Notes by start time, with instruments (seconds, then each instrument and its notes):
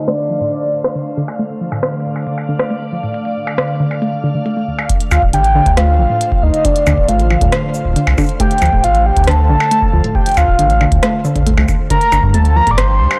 Already playing: ambient pad D3 A3 C5 F5
0.08 synth arpeggio sound A3, soft synth lead D5, cross-stick, closed hi-hat
0.30 synth arpeggio sound F3
0.41 synth arpeggio sound A2, closed hi-hat
0.52 closed hi-hat
0.84 cross-stick
0.95 synth arpeggio sound D3, closed hi-hat
1.17 synth arpeggio sound D3
1.28 closed hi-hat, percussion blips
1.39 synth arpeggio sound A3, closed hi-hat
1.50 closed hi-hat
1.60 synth arpeggio sound F3, ambient pad D5
1.72 synth arpeggio sound A2, percussion blips
1.83 cross-stick, closed hi-hat
1.94 closed hi-hat
2.16 closed hi-hat, percussion blips
2.27 synth arpeggio sound D3, closed hi-hat
2.38 percussion blips
2.49 synth arpeggio sound D3
2.59 cross-stick
2.70 synth arpeggio sound A3, closed hi-hat
2.92 synth arpeggio sound F3
3.03 synth arpeggio sound A2, closed hi-hat
3.14 closed hi-hat
3.25 closed hi-hat
3.47 percussion blips
3.58 synth arpeggio sound D3, cross-stick, closed hi-hat
3.69 closed hi-hat
3.80 synth arpeggio sound D3
3.91 closed hi-hat, percussion blips
4.02 synth arpeggio sound A3, closed hi-hat
4.24 synth arpeggio sound D3
4.35 synth arpeggio sound D3
4.46 synth arpeggio sound A3, closed hi-hat
4.57 synth arpeggio sound A3
4.68 synth arpeggio sound D2
4.79 closed hi-hat, percussion blips
4.89 kick, closed hi-hat
5.00 closed hi-hat
5.06 ambient pad C5
5.11 sub bass D2, soft synth lead F5, percussion blips, shaker
5.22 sub bass D1, kick
5.33 sub bass A1, synth arpeggio sound D3, soft synth lead G5, closed hi-hat
5.44 closed hi-hat
5.55 synth arpeggio sound D3
5.66 sub bass D2, kick, closed hi-hat
5.77 synth arpeggio sound A3, soft synth lead F5, cross-stick, closed hi-hat
5.99 sub bass A1, synth arpeggio sound F3
6.10 synth arpeggio sound A2
6.21 closed hi-hat
6.32 kick
6.43 sub bass D2, soft synth lead D#5
6.54 closed hi-hat
6.65 synth arpeggio sound D3, soft synth lead D5, kick, closed hi-hat
6.76 closed hi-hat
6.87 sub bass D2, synth arpeggio sound D3, percussion blips, shaker
6.98 sub bass D1, kick
7.09 sub bass A1, synth arpeggio sound A3, soft synth lead F5, closed hi-hat
7.20 closed hi-hat
7.30 synth arpeggio sound F3, percussion blips
7.41 sub bass D2, synth arpeggio sound A2, kick, closed hi-hat
7.52 cross-stick, closed hi-hat
7.74 shaker
7.85 kick
7.88 kick
7.91 kick
7.93 synth arpeggio sound D3, kick, closed hi-hat
8.07 sub bass C2, percussion blips
8.18 synth arpeggio sound D3, kick, percussion blips, shaker
8.21 shaker
8.23 shaker
8.26 closed hi-hat, shaker
8.40 synth arpeggio sound A3, soft synth lead G5, kick, closed hi-hat
8.51 closed hi-hat
8.58 sub bass D2, synth arpeggio sound F3, closed hi-hat, percussion blips, shaker
8.66 closed hi-hat
8.73 sub bass D1, synth arpeggio sound A2, kick
8.84 sub bass A1, soft synth lead F5, closed hi-hat
8.95 closed hi-hat
9.06 soft synth lead G5
9.17 sub bass D2, kick, closed hi-hat
9.24 cross-stick, closed hi-hat
9.28 synth arpeggio sound D3, soft synth lead A5, closed hi-hat
9.31 closed hi-hat
9.49 sub bass A1, synth arpeggio sound D3
9.60 percussion blips
9.71 synth arpeggio sound A3, closed hi-hat
9.82 kick
9.93 sub bass D2, synth arpeggio sound F3
10.04 synth arpeggio sound A2, closed hi-hat
10.15 soft synth lead G5, kick
10.26 closed hi-hat
10.29 closed hi-hat
10.32 closed hi-hat
10.34 sub bass D2, soft synth lead F5, closed hi-hat, percussion blips, shaker
10.48 sub bass D1, kick
10.59 sub bass A1, synth arpeggio sound D3, closed hi-hat
10.70 closed hi-hat
10.81 synth arpeggio sound D3, percussion blips
10.92 sub bass D2, kick, closed hi-hat
11.03 synth arpeggio sound A3, cross-stick, closed hi-hat
11.25 synth arpeggio sound D3, shaker
11.36 synth arpeggio sound D3, kick, closed hi-hat
11.39 kick
11.43 kick
11.46 synth arpeggio sound A3, kick, closed hi-hat
11.50 kick
11.54 sub bass C2, synth arpeggio sound A3, kick, percussion blips
11.68 synth arpeggio sound D2, kick, percussion blips, shaker
11.90 synth arpeggio sound D3, ambient pad G3, soft synth lead A#5, kick, closed hi-hat
12.01 closed hi-hat
12.12 sub bass G1, synth arpeggio sound D3, ambient pad G5, percussion blips, shaker
12.19 sub bass G2, ambient pad D4, kick
12.34 sub bass D2, synth arpeggio sound A3, soft synth lead A5, closed hi-hat
12.45 closed hi-hat
12.56 synth arpeggio sound F3, soft synth lead A#5
12.67 sub bass G1, synth arpeggio sound A2, kick, closed hi-hat
12.71 soft synth lead D6
12.78 soft synth lead C6, cross-stick, closed hi-hat
12.86 ambient pad A#4
13.00 sub bass D2
13.11 percussion blips